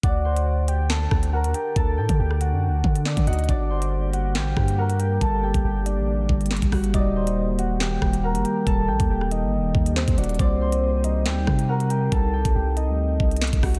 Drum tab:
HH |x-----x-----x---------x---x-x---|x-----x-----x---------x---x-xxxx|x-----x-----x---------x---x-x---|x-----x-----x---------xxxxx-o-x-|
CP |----------------x---------------|------------------------x-------|----------------x---------------|------------------------x-------|
SD |----------------o---r-----------|----------r-------------o-------|----------------o---r-----------|------------------------o---r---|
BD |o-------------------o-----------|o-----o-------------o-----o-----|o-------------------o-----------|o-----o-------------o-----o-o---|

HH |x-----x-----x---------x---x-x---|x-----x-----x---------x---x-xxxx|x-----x-----x---------x---x-x---|x-----x-----x---------xxxxx-o-x-|
CP |----------------x---------------|------------------------x-------|----------------x---------------|------------------------x-------|
SD |----------------o---r-----------|----------r-------------o-------|----------------o---r-----------|------------------------o---r---|
BD |o-------------------o-----------|o-----o-------------o-----o-----|o-------------------o-----------|o-----o-------------o-----o-o---|